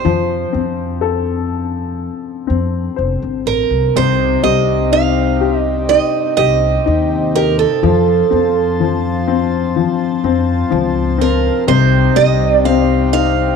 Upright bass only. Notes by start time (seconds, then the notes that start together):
0.05 F2
0.54 F2
2.50 F2
2.98 F1
3.22 G1
3.46 A1
3.70 C2
3.96 C2
4.44 C2
6.38 C2
6.87 D#2
7.83 F2
8.32 F2
10.24 F2
10.72 C#2
11.68 C2
12.16 C2